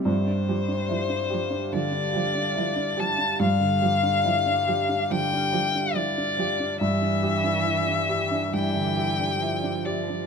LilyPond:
<<
  \new Staff \with { instrumentName = "Violin" } { \time 4/4 \key g \dorian \tempo 4 = 70 c''2 d''4. a''8 | f''2 g''4 d''4 | e''2 g''4. d''8 | }
  \new Staff \with { instrumentName = "Ambient pad" } { \time 4/4 \key g \dorian <d' g' f''>1 | <d' g' f''>1 | <d' g' e''>1 | }
  \new Staff \with { instrumentName = "Grand piano" } { \time 4/4 \key g \dorian g,16 d'16 g'16 d'16 e'16 d'16 g'16 d'16 d16 d'16 g'16 d'16 e'16 d'16 g'16 d'16 | g,16 d16 g'16 d'16 e'16 d'16 g'16 d'16 d16 d'16 g'16 d'16 e'16 d'16 g'16 d'16 | g,16 d'16 g'16 d'16 e'16 d'16 g'16 d'16 g,16 d16 g'16 d'16 e'16 d'16 g'16 d'16 | }
  \new Staff \with { instrumentName = "Cello" } { \clef bass \time 4/4 \key g \dorian f8 f8 f8 f8 f8 f8 f8 f8 | f8 f8 f8 f8 f8 f8 f8 f8 | e2 e4 f4 | }
>>